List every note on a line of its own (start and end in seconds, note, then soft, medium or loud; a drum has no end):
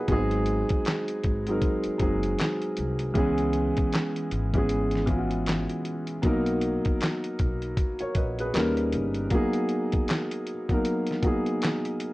0.00 0.08 F#3 medium
0.00 0.10 A#3 medium
0.00 0.10 B3 medium
0.00 0.10 D#4 medium
0.00 0.10 G#4 medium
0.00 0.30 B4 medium
0.00 0.10 D#5 medium
0.08 0.62 G#1 loud
0.08 1.27 F#3 medium
0.08 1.27 G#3 medium
0.08 0.17 B3 medium
0.08 1.28 D#4 medium
0.08 1.29 G#4 loud
0.08 kick medium
0.08 closed hi-hat medium
0.16 1.31 C4 medium
0.31 closed hi-hat soft
0.46 closed hi-hat medium
0.69 kick medium
0.69 closed hi-hat medium
0.85 snare medium
0.85 clap medium
0.85 closed hi-hat medium
1.08 closed hi-hat medium
1.24 1.58 G#1 medium
1.24 kick medium
1.24 closed hi-hat medium
1.47 1.95 F#3 medium
1.47 1.95 G#3 medium
1.47 1.96 C4 medium
1.47 1.96 D#4 medium
1.47 closed hi-hat soft
1.51 1.97 A#4 medium
1.62 kick loud
1.62 closed hi-hat medium
1.84 muted upright bass stroke soft
1.84 closed hi-hat soft
1.98 2.34 F#1 medium
1.98 3.03 F#3 medium
1.98 3.04 G#3 medium
1.98 3.04 C4 medium
1.98 3.05 D#4 medium
1.98 kick medium
1.98 closed hi-hat medium
2.02 3.05 G#4 medium
2.23 closed hi-hat soft
2.39 snare loud
2.39 clap medium
2.39 closed hi-hat medium
2.62 closed hi-hat soft
2.77 3.11 C2 medium
2.77 closed hi-hat medium
2.99 closed hi-hat soft
3.14 4.34 E3 medium
3.14 4.34 G#3 loud
3.14 4.35 B3 medium
3.14 4.35 C#4 medium
3.14 4.35 G#4 loud
3.14 kick medium
3.14 closed hi-hat medium
3.38 closed hi-hat soft
3.53 closed hi-hat medium
3.77 kick medium
3.77 closed hi-hat soft
3.93 snare medium
3.93 clap medium
3.93 closed hi-hat medium
4.16 closed hi-hat medium
4.31 5.66 G#1 medium
4.31 closed hi-hat medium
4.54 5.02 E3 medium
4.54 5.03 G#3 medium
4.54 5.03 B3 medium
4.54 5.04 C#4 medium
4.54 5.04 G#4 medium
4.54 kick medium
4.54 closed hi-hat soft
4.69 closed hi-hat medium
4.91 closed hi-hat soft
4.95 snare soft
5.06 6.11 E3 medium
5.06 6.12 G#3 medium
5.06 6.12 B3 medium
5.06 6.13 C#4 medium
5.06 5.17 F4 medium
5.06 kick medium
5.06 closed hi-hat medium
5.16 6.17 F#4 medium
5.31 closed hi-hat soft
5.46 snare loud
5.46 clap medium
5.46 closed hi-hat medium
5.69 closed hi-hat soft
5.85 closed hi-hat medium
6.07 closed hi-hat soft
6.22 6.77 B1 medium
6.22 7.42 F#3 loud
6.22 7.42 A#3 medium
6.22 7.43 B3 medium
6.22 7.43 D#4 medium
6.22 kick loud
6.22 closed hi-hat medium
6.26 7.40 A#4 loud
6.46 closed hi-hat soft
6.61 closed hi-hat medium
6.85 kick medium
6.85 closed hi-hat medium
7.01 snare loud
7.01 clap medium
7.01 closed hi-hat medium
7.24 closed hi-hat soft
7.39 7.73 B1 medium
7.39 kick medium
7.39 closed hi-hat medium
7.62 closed hi-hat soft
7.77 kick loud
7.77 closed hi-hat medium
7.99 8.15 A#4 medium
7.99 8.15 C#5 medium
7.99 muted upright bass stroke soft
7.99 closed hi-hat soft
8.15 8.49 A#1 medium
8.15 8.38 B4 medium
8.15 8.38 D#5 medium
8.15 kick medium
8.15 closed hi-hat medium
8.39 8.76 G#4 medium
8.39 8.76 B4 medium
8.39 closed hi-hat soft
8.54 8.95 D#2 medium
8.54 9.23 G3 medium
8.54 9.24 A#3 medium
8.54 9.24 C#4 medium
8.54 9.25 D#4 medium
8.54 snare loud
8.54 clap medium
8.54 closed hi-hat medium
8.58 9.25 A#4 loud
8.77 closed hi-hat soft
8.92 9.27 G1 medium
8.92 closed hi-hat medium
9.14 closed hi-hat soft
9.30 10.50 F#3 medium
9.30 10.50 A#3 medium
9.30 10.51 B3 medium
9.30 10.51 D#4 medium
9.30 kick medium
9.30 closed hi-hat medium
9.35 10.52 G#4 loud
9.53 closed hi-hat soft
9.69 closed hi-hat medium
9.92 kick medium
9.92 closed hi-hat soft
10.08 snare loud
10.08 clap medium
10.08 closed hi-hat medium
10.31 closed hi-hat medium
10.47 closed hi-hat medium
10.69 11.18 F#3 medium
10.69 11.18 A#3 medium
10.69 11.19 B3 medium
10.69 11.19 D#4 medium
10.69 11.20 A#4 medium
10.69 kick medium
10.69 closed hi-hat soft
10.85 closed hi-hat medium
11.07 closed hi-hat medium
11.11 snare soft
11.22 12.13 F#3 medium
11.22 12.13 A#3 medium
11.22 12.13 B3 medium
11.22 12.13 D#4 medium
11.22 kick medium
11.22 closed hi-hat medium
11.26 12.13 G#4 medium
11.46 closed hi-hat soft
11.62 snare loud
11.62 clap medium
11.62 closed hi-hat medium
11.85 closed hi-hat soft
12.00 closed hi-hat medium